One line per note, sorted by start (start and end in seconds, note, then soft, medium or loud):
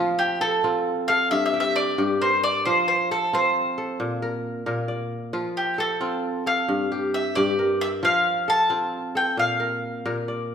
0.00 1.35 F3 medium
0.00 0.91 A3 soft
0.00 0.47 A#3 soft
0.00 0.63 C4 soft
0.00 0.69 D4 soft
0.00 0.64 F4 medium
0.00 0.11 C5 medium
0.19 0.41 G4 medium
0.41 1.09 A4 medium
0.41 1.10 A4 medium
0.64 2.44 C4 medium
0.64 2.15 F4 medium
1.08 2.27 A4 medium
1.08 1.30 F5 medium
1.31 1.97 G2 medium
1.31 1.44 E5 medium
1.46 1.59 E5 medium
1.54 1.98 G4 medium
1.60 1.76 E5 medium
1.76 2.17 D5 medium
1.98 2.70 G2 medium
1.98 3.40 G4 medium
2.21 3.17 A#4 medium
2.21 2.42 C5 medium
2.44 2.65 D5 medium
2.65 4.05 F3 medium
2.65 3.33 F4 medium
2.65 2.86 C5 medium
2.88 3.11 C5 medium
3.11 3.77 A4 medium
3.11 3.32 A4 medium
3.33 5.13 C4 medium
3.33 4.85 F4 medium
3.33 3.97 C5 medium
3.78 4.28 A4 medium
4.00 4.65 A#2 medium
4.22 4.66 A#4 medium
4.66 5.39 A#2 medium
4.66 5.84 A#4 medium
4.88 5.99 D5 medium
5.33 6.74 F3 medium
5.33 6.00 F4 medium
5.57 5.80 G4 medium
5.78 6.46 A4 medium
5.78 6.43 A4 medium
6.01 7.81 C4 medium
6.01 7.52 F4 medium
6.46 7.65 A4 medium
6.46 7.14 F5 medium
6.68 7.36 G2 medium
6.92 7.36 G4 medium
7.14 7.35 E5 medium
7.35 8.08 G2 medium
7.35 8.78 G4 medium
7.35 7.82 D5 medium
7.59 8.54 A#4 medium
7.81 7.87 E5 medium
8.03 9.43 F3 medium
8.03 8.70 F4 medium
8.03 8.49 F5 medium
8.48 9.15 A4 medium
8.48 9.16 A5 medium
8.70 10.50 C4 medium
8.70 10.21 F4 medium
9.15 9.66 A4 medium
9.15 9.39 G5 medium
9.37 10.04 A#2 medium
9.37 10.47 F5 medium
9.60 10.05 A#4 medium
10.06 10.55 A#2 medium
10.06 10.55 A#4 medium
10.28 10.55 D5 medium